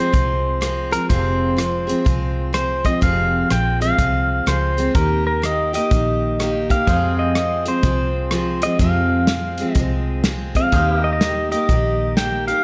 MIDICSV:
0, 0, Header, 1, 6, 480
1, 0, Start_track
1, 0, Key_signature, -4, "minor"
1, 0, Tempo, 481928
1, 1094, Time_signature, 4, 2, 24, 8
1, 12588, End_track
2, 0, Start_track
2, 0, Title_t, "Pedal steel guitar"
2, 0, Program_c, 0, 26
2, 0, Note_on_c, 0, 72, 87
2, 921, Note_on_c, 0, 70, 74
2, 948, Note_off_c, 0, 72, 0
2, 1090, Note_on_c, 0, 72, 78
2, 1099, Note_off_c, 0, 70, 0
2, 2519, Note_off_c, 0, 72, 0
2, 2531, Note_on_c, 0, 72, 78
2, 2845, Note_on_c, 0, 75, 83
2, 2848, Note_off_c, 0, 72, 0
2, 3004, Note_off_c, 0, 75, 0
2, 3018, Note_on_c, 0, 77, 96
2, 3499, Note_off_c, 0, 77, 0
2, 3503, Note_on_c, 0, 79, 89
2, 3801, Note_off_c, 0, 79, 0
2, 3805, Note_on_c, 0, 77, 102
2, 4462, Note_on_c, 0, 72, 82
2, 4474, Note_off_c, 0, 77, 0
2, 4932, Note_on_c, 0, 70, 78
2, 4951, Note_off_c, 0, 72, 0
2, 5234, Note_off_c, 0, 70, 0
2, 5246, Note_on_c, 0, 70, 75
2, 5403, Note_off_c, 0, 70, 0
2, 5432, Note_on_c, 0, 75, 84
2, 5718, Note_off_c, 0, 75, 0
2, 5730, Note_on_c, 0, 75, 96
2, 6681, Note_off_c, 0, 75, 0
2, 6685, Note_on_c, 0, 77, 85
2, 7157, Note_off_c, 0, 77, 0
2, 7161, Note_on_c, 0, 75, 84
2, 7652, Note_on_c, 0, 72, 81
2, 7653, Note_off_c, 0, 75, 0
2, 8597, Note_on_c, 0, 75, 77
2, 8633, Note_off_c, 0, 72, 0
2, 8769, Note_off_c, 0, 75, 0
2, 8773, Note_on_c, 0, 77, 74
2, 9710, Note_off_c, 0, 77, 0
2, 9710, Note_on_c, 0, 75, 74
2, 10171, Note_off_c, 0, 75, 0
2, 10523, Note_on_c, 0, 77, 83
2, 10992, Note_off_c, 0, 77, 0
2, 10996, Note_on_c, 0, 75, 71
2, 11071, Note_off_c, 0, 75, 0
2, 11083, Note_on_c, 0, 75, 79
2, 11460, Note_off_c, 0, 75, 0
2, 11472, Note_on_c, 0, 75, 85
2, 12124, Note_on_c, 0, 79, 90
2, 12147, Note_off_c, 0, 75, 0
2, 12422, Note_off_c, 0, 79, 0
2, 12426, Note_on_c, 0, 77, 76
2, 12588, Note_off_c, 0, 77, 0
2, 12588, End_track
3, 0, Start_track
3, 0, Title_t, "Pedal steel guitar"
3, 0, Program_c, 1, 26
3, 6842, Note_on_c, 1, 68, 60
3, 6853, Note_on_c, 1, 72, 64
3, 6864, Note_on_c, 1, 77, 61
3, 10647, Note_off_c, 1, 68, 0
3, 10652, Note_off_c, 1, 72, 0
3, 10658, Note_off_c, 1, 77, 0
3, 10692, Note_on_c, 1, 68, 62
3, 10700, Note_on_c, 1, 72, 67
3, 10713, Note_on_c, 1, 77, 65
3, 10891, Note_off_c, 1, 68, 0
3, 10891, Note_on_c, 1, 67, 62
3, 10949, Note_off_c, 1, 72, 0
3, 10949, Note_on_c, 1, 70, 67
3, 10962, Note_off_c, 1, 77, 0
3, 10962, Note_on_c, 1, 75, 65
3, 12588, Note_off_c, 1, 67, 0
3, 12588, Note_off_c, 1, 70, 0
3, 12588, Note_off_c, 1, 75, 0
3, 12588, End_track
4, 0, Start_track
4, 0, Title_t, "Steel-string acoustic guitar"
4, 0, Program_c, 2, 25
4, 0, Note_on_c, 2, 53, 39
4, 0, Note_on_c, 2, 56, 46
4, 0, Note_on_c, 2, 60, 46
4, 0, Note_on_c, 2, 68, 49
4, 112, Note_off_c, 2, 53, 0
4, 120, Note_off_c, 2, 56, 0
4, 124, Note_on_c, 2, 53, 57
4, 130, Note_off_c, 2, 60, 0
4, 132, Note_off_c, 2, 68, 0
4, 132, Note_on_c, 2, 56, 57
4, 142, Note_on_c, 2, 60, 54
4, 155, Note_on_c, 2, 68, 60
4, 593, Note_off_c, 2, 53, 0
4, 605, Note_on_c, 2, 53, 62
4, 606, Note_off_c, 2, 56, 0
4, 618, Note_off_c, 2, 60, 0
4, 618, Note_on_c, 2, 56, 67
4, 624, Note_off_c, 2, 68, 0
4, 631, Note_on_c, 2, 60, 60
4, 640, Note_on_c, 2, 68, 70
4, 897, Note_off_c, 2, 68, 0
4, 909, Note_on_c, 2, 68, 46
4, 917, Note_off_c, 2, 53, 0
4, 918, Note_off_c, 2, 60, 0
4, 923, Note_off_c, 2, 56, 0
4, 929, Note_on_c, 2, 60, 43
4, 935, Note_on_c, 2, 56, 43
4, 944, Note_on_c, 2, 53, 38
4, 1087, Note_off_c, 2, 53, 0
4, 1088, Note_off_c, 2, 68, 0
4, 1090, Note_on_c, 2, 41, 70
4, 1092, Note_off_c, 2, 56, 0
4, 1093, Note_off_c, 2, 60, 0
4, 1096, Note_on_c, 2, 48, 68
4, 1098, Note_on_c, 2, 53, 71
4, 1104, Note_on_c, 2, 56, 78
4, 1105, Note_on_c, 2, 60, 80
4, 1116, Note_on_c, 2, 68, 80
4, 1548, Note_off_c, 2, 53, 0
4, 1557, Note_off_c, 2, 56, 0
4, 1560, Note_on_c, 2, 53, 52
4, 1565, Note_off_c, 2, 60, 0
4, 1569, Note_on_c, 2, 56, 50
4, 1571, Note_off_c, 2, 68, 0
4, 1572, Note_off_c, 2, 41, 0
4, 1575, Note_off_c, 2, 48, 0
4, 1577, Note_on_c, 2, 60, 59
4, 1583, Note_on_c, 2, 68, 59
4, 1850, Note_off_c, 2, 68, 0
4, 1862, Note_on_c, 2, 68, 56
4, 1863, Note_off_c, 2, 60, 0
4, 1874, Note_off_c, 2, 53, 0
4, 1874, Note_off_c, 2, 56, 0
4, 1875, Note_on_c, 2, 60, 58
4, 1886, Note_on_c, 2, 56, 46
4, 1888, Note_on_c, 2, 53, 44
4, 2026, Note_off_c, 2, 53, 0
4, 2038, Note_on_c, 2, 53, 64
4, 2043, Note_off_c, 2, 56, 0
4, 2044, Note_off_c, 2, 68, 0
4, 2047, Note_off_c, 2, 60, 0
4, 2055, Note_on_c, 2, 56, 66
4, 2059, Note_on_c, 2, 60, 67
4, 2068, Note_on_c, 2, 68, 65
4, 2505, Note_off_c, 2, 53, 0
4, 2517, Note_on_c, 2, 53, 55
4, 2518, Note_off_c, 2, 56, 0
4, 2524, Note_off_c, 2, 60, 0
4, 2530, Note_on_c, 2, 56, 57
4, 2533, Note_off_c, 2, 68, 0
4, 2536, Note_on_c, 2, 60, 54
4, 2545, Note_on_c, 2, 68, 64
4, 2817, Note_off_c, 2, 68, 0
4, 2829, Note_on_c, 2, 68, 48
4, 2830, Note_off_c, 2, 60, 0
4, 2832, Note_off_c, 2, 53, 0
4, 2839, Note_off_c, 2, 56, 0
4, 2842, Note_on_c, 2, 60, 42
4, 2850, Note_on_c, 2, 56, 37
4, 2858, Note_on_c, 2, 53, 38
4, 3000, Note_off_c, 2, 53, 0
4, 3000, Note_on_c, 2, 41, 69
4, 3002, Note_off_c, 2, 56, 0
4, 3007, Note_off_c, 2, 68, 0
4, 3009, Note_off_c, 2, 60, 0
4, 3011, Note_on_c, 2, 48, 69
4, 3012, Note_on_c, 2, 53, 77
4, 3014, Note_on_c, 2, 56, 71
4, 3021, Note_on_c, 2, 60, 81
4, 3023, Note_on_c, 2, 68, 86
4, 3477, Note_off_c, 2, 53, 0
4, 3486, Note_off_c, 2, 41, 0
4, 3488, Note_off_c, 2, 56, 0
4, 3489, Note_on_c, 2, 53, 53
4, 3492, Note_off_c, 2, 48, 0
4, 3497, Note_off_c, 2, 60, 0
4, 3498, Note_off_c, 2, 68, 0
4, 3500, Note_on_c, 2, 56, 56
4, 3508, Note_on_c, 2, 60, 55
4, 3517, Note_on_c, 2, 68, 56
4, 3783, Note_off_c, 2, 68, 0
4, 3794, Note_on_c, 2, 68, 50
4, 3797, Note_off_c, 2, 60, 0
4, 3798, Note_off_c, 2, 53, 0
4, 3801, Note_off_c, 2, 56, 0
4, 3809, Note_on_c, 2, 60, 49
4, 3813, Note_on_c, 2, 56, 43
4, 3825, Note_on_c, 2, 53, 41
4, 3955, Note_off_c, 2, 53, 0
4, 3967, Note_on_c, 2, 53, 51
4, 3968, Note_off_c, 2, 56, 0
4, 3970, Note_off_c, 2, 60, 0
4, 3970, Note_off_c, 2, 68, 0
4, 3980, Note_on_c, 2, 56, 58
4, 3982, Note_on_c, 2, 60, 58
4, 3992, Note_on_c, 2, 68, 57
4, 4433, Note_off_c, 2, 53, 0
4, 4445, Note_off_c, 2, 56, 0
4, 4445, Note_on_c, 2, 53, 56
4, 4454, Note_off_c, 2, 60, 0
4, 4457, Note_on_c, 2, 56, 57
4, 4462, Note_off_c, 2, 68, 0
4, 4466, Note_on_c, 2, 60, 55
4, 4472, Note_on_c, 2, 68, 62
4, 4740, Note_off_c, 2, 68, 0
4, 4752, Note_on_c, 2, 68, 43
4, 4755, Note_off_c, 2, 53, 0
4, 4755, Note_off_c, 2, 60, 0
4, 4762, Note_off_c, 2, 56, 0
4, 4767, Note_on_c, 2, 60, 46
4, 4773, Note_on_c, 2, 56, 44
4, 4786, Note_on_c, 2, 53, 37
4, 4922, Note_off_c, 2, 53, 0
4, 4925, Note_off_c, 2, 56, 0
4, 4926, Note_on_c, 2, 51, 73
4, 4928, Note_off_c, 2, 68, 0
4, 4929, Note_on_c, 2, 58, 74
4, 4936, Note_off_c, 2, 60, 0
4, 4942, Note_on_c, 2, 63, 70
4, 4942, Note_on_c, 2, 67, 81
4, 5386, Note_off_c, 2, 51, 0
4, 5398, Note_off_c, 2, 58, 0
4, 5398, Note_on_c, 2, 51, 52
4, 5406, Note_off_c, 2, 63, 0
4, 5410, Note_on_c, 2, 58, 53
4, 5416, Note_off_c, 2, 67, 0
4, 5418, Note_on_c, 2, 63, 54
4, 5429, Note_on_c, 2, 67, 53
4, 5696, Note_off_c, 2, 67, 0
4, 5708, Note_on_c, 2, 67, 53
4, 5712, Note_off_c, 2, 51, 0
4, 5716, Note_off_c, 2, 63, 0
4, 5718, Note_off_c, 2, 58, 0
4, 5728, Note_on_c, 2, 63, 48
4, 5741, Note_on_c, 2, 58, 42
4, 5886, Note_off_c, 2, 67, 0
4, 5896, Note_off_c, 2, 63, 0
4, 5896, Note_on_c, 2, 51, 49
4, 5897, Note_off_c, 2, 58, 0
4, 5908, Note_on_c, 2, 58, 53
4, 5915, Note_on_c, 2, 63, 57
4, 5925, Note_on_c, 2, 67, 58
4, 6357, Note_off_c, 2, 51, 0
4, 6369, Note_on_c, 2, 51, 55
4, 6371, Note_off_c, 2, 58, 0
4, 6379, Note_off_c, 2, 63, 0
4, 6383, Note_on_c, 2, 58, 61
4, 6388, Note_off_c, 2, 67, 0
4, 6391, Note_on_c, 2, 63, 66
4, 6399, Note_on_c, 2, 67, 63
4, 6655, Note_off_c, 2, 67, 0
4, 6667, Note_on_c, 2, 67, 47
4, 6677, Note_off_c, 2, 51, 0
4, 6678, Note_off_c, 2, 63, 0
4, 6684, Note_off_c, 2, 58, 0
4, 6690, Note_on_c, 2, 63, 42
4, 6699, Note_on_c, 2, 58, 35
4, 6845, Note_off_c, 2, 67, 0
4, 6856, Note_off_c, 2, 63, 0
4, 6856, Note_on_c, 2, 41, 75
4, 6859, Note_on_c, 2, 48, 67
4, 6861, Note_off_c, 2, 58, 0
4, 6863, Note_on_c, 2, 53, 69
4, 6870, Note_on_c, 2, 56, 77
4, 6872, Note_on_c, 2, 60, 76
4, 6874, Note_on_c, 2, 68, 75
4, 7320, Note_off_c, 2, 53, 0
4, 7330, Note_off_c, 2, 56, 0
4, 7332, Note_on_c, 2, 53, 49
4, 7333, Note_off_c, 2, 41, 0
4, 7334, Note_off_c, 2, 48, 0
4, 7341, Note_off_c, 2, 60, 0
4, 7342, Note_off_c, 2, 68, 0
4, 7342, Note_on_c, 2, 56, 54
4, 7354, Note_on_c, 2, 60, 59
4, 7356, Note_on_c, 2, 68, 60
4, 7611, Note_off_c, 2, 68, 0
4, 7623, Note_on_c, 2, 68, 52
4, 7625, Note_off_c, 2, 60, 0
4, 7634, Note_off_c, 2, 56, 0
4, 7637, Note_on_c, 2, 60, 45
4, 7638, Note_off_c, 2, 53, 0
4, 7646, Note_on_c, 2, 56, 47
4, 7652, Note_on_c, 2, 53, 41
4, 7796, Note_off_c, 2, 53, 0
4, 7802, Note_off_c, 2, 68, 0
4, 7805, Note_off_c, 2, 56, 0
4, 7808, Note_on_c, 2, 53, 54
4, 7810, Note_off_c, 2, 60, 0
4, 7817, Note_on_c, 2, 56, 53
4, 7823, Note_on_c, 2, 60, 55
4, 7835, Note_on_c, 2, 68, 58
4, 8273, Note_off_c, 2, 53, 0
4, 8282, Note_off_c, 2, 56, 0
4, 8285, Note_on_c, 2, 53, 60
4, 8287, Note_off_c, 2, 60, 0
4, 8294, Note_on_c, 2, 56, 69
4, 8299, Note_on_c, 2, 60, 68
4, 8302, Note_off_c, 2, 68, 0
4, 8314, Note_on_c, 2, 68, 68
4, 8570, Note_off_c, 2, 68, 0
4, 8582, Note_on_c, 2, 68, 44
4, 8592, Note_off_c, 2, 60, 0
4, 8594, Note_off_c, 2, 53, 0
4, 8599, Note_off_c, 2, 56, 0
4, 8604, Note_on_c, 2, 60, 45
4, 8611, Note_on_c, 2, 56, 39
4, 8617, Note_on_c, 2, 53, 37
4, 8762, Note_off_c, 2, 53, 0
4, 8762, Note_off_c, 2, 68, 0
4, 8765, Note_off_c, 2, 56, 0
4, 8767, Note_on_c, 2, 41, 64
4, 8770, Note_on_c, 2, 48, 70
4, 8773, Note_off_c, 2, 60, 0
4, 8774, Note_on_c, 2, 53, 78
4, 8777, Note_on_c, 2, 56, 78
4, 8784, Note_on_c, 2, 60, 72
4, 8785, Note_on_c, 2, 68, 76
4, 9232, Note_off_c, 2, 53, 0
4, 9243, Note_off_c, 2, 56, 0
4, 9244, Note_on_c, 2, 53, 51
4, 9248, Note_off_c, 2, 41, 0
4, 9249, Note_off_c, 2, 60, 0
4, 9250, Note_off_c, 2, 48, 0
4, 9255, Note_on_c, 2, 56, 53
4, 9257, Note_off_c, 2, 68, 0
4, 9261, Note_on_c, 2, 60, 57
4, 9276, Note_on_c, 2, 68, 57
4, 9548, Note_off_c, 2, 68, 0
4, 9554, Note_off_c, 2, 53, 0
4, 9559, Note_off_c, 2, 56, 0
4, 9559, Note_off_c, 2, 60, 0
4, 9560, Note_on_c, 2, 68, 54
4, 9571, Note_on_c, 2, 60, 55
4, 9575, Note_on_c, 2, 56, 50
4, 9584, Note_on_c, 2, 53, 46
4, 9721, Note_off_c, 2, 53, 0
4, 9731, Note_off_c, 2, 68, 0
4, 9733, Note_on_c, 2, 53, 59
4, 9736, Note_off_c, 2, 60, 0
4, 9738, Note_off_c, 2, 56, 0
4, 9753, Note_on_c, 2, 56, 61
4, 9760, Note_on_c, 2, 60, 66
4, 9771, Note_on_c, 2, 68, 62
4, 10197, Note_off_c, 2, 53, 0
4, 10209, Note_on_c, 2, 53, 58
4, 10215, Note_off_c, 2, 56, 0
4, 10224, Note_off_c, 2, 60, 0
4, 10227, Note_on_c, 2, 56, 59
4, 10230, Note_off_c, 2, 68, 0
4, 10236, Note_on_c, 2, 60, 67
4, 10242, Note_on_c, 2, 68, 73
4, 10501, Note_off_c, 2, 68, 0
4, 10506, Note_off_c, 2, 60, 0
4, 10512, Note_off_c, 2, 56, 0
4, 10513, Note_on_c, 2, 68, 50
4, 10516, Note_off_c, 2, 53, 0
4, 10518, Note_on_c, 2, 60, 42
4, 10524, Note_on_c, 2, 56, 39
4, 10535, Note_on_c, 2, 53, 37
4, 10688, Note_off_c, 2, 68, 0
4, 10690, Note_off_c, 2, 60, 0
4, 10693, Note_off_c, 2, 56, 0
4, 10696, Note_off_c, 2, 53, 0
4, 10700, Note_on_c, 2, 51, 68
4, 10707, Note_on_c, 2, 63, 79
4, 10710, Note_on_c, 2, 58, 77
4, 10717, Note_on_c, 2, 67, 75
4, 11153, Note_off_c, 2, 51, 0
4, 11165, Note_off_c, 2, 58, 0
4, 11165, Note_on_c, 2, 51, 56
4, 11177, Note_on_c, 2, 58, 56
4, 11178, Note_off_c, 2, 63, 0
4, 11181, Note_off_c, 2, 67, 0
4, 11189, Note_on_c, 2, 63, 57
4, 11193, Note_on_c, 2, 67, 55
4, 11455, Note_off_c, 2, 67, 0
4, 11467, Note_on_c, 2, 67, 50
4, 11471, Note_off_c, 2, 63, 0
4, 11475, Note_off_c, 2, 51, 0
4, 11481, Note_off_c, 2, 58, 0
4, 11483, Note_on_c, 2, 63, 42
4, 11498, Note_on_c, 2, 58, 45
4, 11645, Note_off_c, 2, 67, 0
4, 11647, Note_on_c, 2, 51, 51
4, 11650, Note_off_c, 2, 58, 0
4, 11653, Note_off_c, 2, 63, 0
4, 11662, Note_on_c, 2, 58, 50
4, 11668, Note_on_c, 2, 63, 54
4, 11677, Note_on_c, 2, 67, 57
4, 12119, Note_off_c, 2, 51, 0
4, 12131, Note_off_c, 2, 58, 0
4, 12131, Note_on_c, 2, 51, 55
4, 12140, Note_off_c, 2, 63, 0
4, 12143, Note_on_c, 2, 58, 57
4, 12144, Note_off_c, 2, 67, 0
4, 12152, Note_on_c, 2, 63, 59
4, 12156, Note_on_c, 2, 67, 60
4, 12426, Note_off_c, 2, 67, 0
4, 12438, Note_off_c, 2, 51, 0
4, 12438, Note_on_c, 2, 67, 45
4, 12444, Note_off_c, 2, 58, 0
4, 12446, Note_off_c, 2, 63, 0
4, 12457, Note_on_c, 2, 63, 43
4, 12469, Note_on_c, 2, 58, 36
4, 12588, Note_off_c, 2, 58, 0
4, 12588, Note_off_c, 2, 63, 0
4, 12588, Note_off_c, 2, 67, 0
4, 12588, End_track
5, 0, Start_track
5, 0, Title_t, "Fingered electric bass"
5, 0, Program_c, 3, 33
5, 139, Note_on_c, 3, 36, 72
5, 954, Note_off_c, 3, 36, 0
5, 1092, Note_on_c, 3, 29, 73
5, 1910, Note_off_c, 3, 29, 0
5, 2055, Note_on_c, 3, 36, 69
5, 2871, Note_off_c, 3, 36, 0
5, 3006, Note_on_c, 3, 29, 84
5, 3417, Note_off_c, 3, 29, 0
5, 3497, Note_on_c, 3, 34, 76
5, 3903, Note_off_c, 3, 34, 0
5, 3967, Note_on_c, 3, 36, 74
5, 4377, Note_off_c, 3, 36, 0
5, 4449, Note_on_c, 3, 37, 69
5, 4858, Note_off_c, 3, 37, 0
5, 4933, Note_on_c, 3, 39, 79
5, 5749, Note_off_c, 3, 39, 0
5, 5891, Note_on_c, 3, 34, 70
5, 6707, Note_off_c, 3, 34, 0
5, 6846, Note_on_c, 3, 41, 78
5, 7665, Note_off_c, 3, 41, 0
5, 7797, Note_on_c, 3, 36, 68
5, 8619, Note_off_c, 3, 36, 0
5, 8759, Note_on_c, 3, 41, 83
5, 9580, Note_off_c, 3, 41, 0
5, 9715, Note_on_c, 3, 36, 77
5, 10539, Note_off_c, 3, 36, 0
5, 10678, Note_on_c, 3, 39, 82
5, 11501, Note_off_c, 3, 39, 0
5, 11641, Note_on_c, 3, 34, 72
5, 12463, Note_off_c, 3, 34, 0
5, 12588, End_track
6, 0, Start_track
6, 0, Title_t, "Drums"
6, 135, Note_on_c, 9, 36, 95
6, 138, Note_on_c, 9, 42, 59
6, 235, Note_off_c, 9, 36, 0
6, 238, Note_off_c, 9, 42, 0
6, 617, Note_on_c, 9, 37, 100
6, 617, Note_on_c, 9, 42, 56
6, 717, Note_off_c, 9, 37, 0
6, 717, Note_off_c, 9, 42, 0
6, 924, Note_on_c, 9, 42, 61
6, 1024, Note_off_c, 9, 42, 0
6, 1095, Note_on_c, 9, 36, 92
6, 1095, Note_on_c, 9, 42, 56
6, 1195, Note_off_c, 9, 36, 0
6, 1195, Note_off_c, 9, 42, 0
6, 1578, Note_on_c, 9, 37, 94
6, 1578, Note_on_c, 9, 42, 53
6, 1678, Note_off_c, 9, 37, 0
6, 1678, Note_off_c, 9, 42, 0
6, 1886, Note_on_c, 9, 42, 55
6, 1985, Note_off_c, 9, 42, 0
6, 2053, Note_on_c, 9, 36, 101
6, 2057, Note_on_c, 9, 42, 51
6, 2153, Note_off_c, 9, 36, 0
6, 2157, Note_off_c, 9, 42, 0
6, 2531, Note_on_c, 9, 37, 94
6, 2531, Note_on_c, 9, 42, 52
6, 2631, Note_off_c, 9, 37, 0
6, 2631, Note_off_c, 9, 42, 0
6, 2836, Note_on_c, 9, 36, 69
6, 2837, Note_on_c, 9, 42, 53
6, 2936, Note_off_c, 9, 36, 0
6, 2937, Note_off_c, 9, 42, 0
6, 3009, Note_on_c, 9, 36, 98
6, 3011, Note_on_c, 9, 42, 54
6, 3109, Note_off_c, 9, 36, 0
6, 3111, Note_off_c, 9, 42, 0
6, 3491, Note_on_c, 9, 37, 96
6, 3491, Note_on_c, 9, 42, 58
6, 3591, Note_off_c, 9, 37, 0
6, 3591, Note_off_c, 9, 42, 0
6, 3801, Note_on_c, 9, 42, 60
6, 3901, Note_off_c, 9, 42, 0
6, 3970, Note_on_c, 9, 36, 102
6, 3973, Note_on_c, 9, 42, 56
6, 4069, Note_off_c, 9, 36, 0
6, 4072, Note_off_c, 9, 42, 0
6, 4453, Note_on_c, 9, 37, 103
6, 4453, Note_on_c, 9, 42, 58
6, 4553, Note_off_c, 9, 37, 0
6, 4553, Note_off_c, 9, 42, 0
6, 4761, Note_on_c, 9, 42, 55
6, 4861, Note_off_c, 9, 42, 0
6, 4928, Note_on_c, 9, 42, 53
6, 4929, Note_on_c, 9, 36, 97
6, 5027, Note_off_c, 9, 42, 0
6, 5029, Note_off_c, 9, 36, 0
6, 5413, Note_on_c, 9, 37, 95
6, 5413, Note_on_c, 9, 42, 60
6, 5512, Note_off_c, 9, 37, 0
6, 5512, Note_off_c, 9, 42, 0
6, 5719, Note_on_c, 9, 42, 63
6, 5818, Note_off_c, 9, 42, 0
6, 5887, Note_on_c, 9, 42, 58
6, 5889, Note_on_c, 9, 36, 102
6, 5987, Note_off_c, 9, 42, 0
6, 5989, Note_off_c, 9, 36, 0
6, 6374, Note_on_c, 9, 37, 93
6, 6374, Note_on_c, 9, 42, 50
6, 6474, Note_off_c, 9, 37, 0
6, 6474, Note_off_c, 9, 42, 0
6, 6676, Note_on_c, 9, 36, 69
6, 6677, Note_on_c, 9, 42, 55
6, 6775, Note_off_c, 9, 36, 0
6, 6777, Note_off_c, 9, 42, 0
6, 6847, Note_on_c, 9, 36, 94
6, 6848, Note_on_c, 9, 42, 53
6, 6946, Note_off_c, 9, 36, 0
6, 6947, Note_off_c, 9, 42, 0
6, 7324, Note_on_c, 9, 37, 99
6, 7324, Note_on_c, 9, 42, 54
6, 7424, Note_off_c, 9, 37, 0
6, 7424, Note_off_c, 9, 42, 0
6, 7625, Note_on_c, 9, 42, 57
6, 7725, Note_off_c, 9, 42, 0
6, 7799, Note_on_c, 9, 42, 59
6, 7802, Note_on_c, 9, 36, 104
6, 7898, Note_off_c, 9, 42, 0
6, 7902, Note_off_c, 9, 36, 0
6, 8276, Note_on_c, 9, 37, 101
6, 8276, Note_on_c, 9, 42, 55
6, 8376, Note_off_c, 9, 37, 0
6, 8376, Note_off_c, 9, 42, 0
6, 8583, Note_on_c, 9, 42, 61
6, 8683, Note_off_c, 9, 42, 0
6, 8757, Note_on_c, 9, 42, 56
6, 8759, Note_on_c, 9, 36, 88
6, 8857, Note_off_c, 9, 42, 0
6, 8859, Note_off_c, 9, 36, 0
6, 9236, Note_on_c, 9, 38, 93
6, 9236, Note_on_c, 9, 42, 60
6, 9336, Note_off_c, 9, 38, 0
6, 9336, Note_off_c, 9, 42, 0
6, 9538, Note_on_c, 9, 42, 62
6, 9638, Note_off_c, 9, 42, 0
6, 9709, Note_on_c, 9, 42, 61
6, 9717, Note_on_c, 9, 36, 97
6, 9809, Note_off_c, 9, 42, 0
6, 9816, Note_off_c, 9, 36, 0
6, 10196, Note_on_c, 9, 38, 94
6, 10196, Note_on_c, 9, 42, 58
6, 10296, Note_off_c, 9, 38, 0
6, 10296, Note_off_c, 9, 42, 0
6, 10508, Note_on_c, 9, 36, 71
6, 10509, Note_on_c, 9, 42, 59
6, 10608, Note_off_c, 9, 36, 0
6, 10609, Note_off_c, 9, 42, 0
6, 10679, Note_on_c, 9, 42, 50
6, 10681, Note_on_c, 9, 36, 96
6, 10778, Note_off_c, 9, 42, 0
6, 10781, Note_off_c, 9, 36, 0
6, 11164, Note_on_c, 9, 38, 102
6, 11164, Note_on_c, 9, 42, 55
6, 11264, Note_off_c, 9, 38, 0
6, 11264, Note_off_c, 9, 42, 0
6, 11475, Note_on_c, 9, 42, 55
6, 11574, Note_off_c, 9, 42, 0
6, 11642, Note_on_c, 9, 42, 53
6, 11643, Note_on_c, 9, 36, 94
6, 11741, Note_off_c, 9, 42, 0
6, 11743, Note_off_c, 9, 36, 0
6, 12120, Note_on_c, 9, 38, 93
6, 12120, Note_on_c, 9, 42, 57
6, 12219, Note_off_c, 9, 38, 0
6, 12219, Note_off_c, 9, 42, 0
6, 12431, Note_on_c, 9, 42, 58
6, 12530, Note_off_c, 9, 42, 0
6, 12588, End_track
0, 0, End_of_file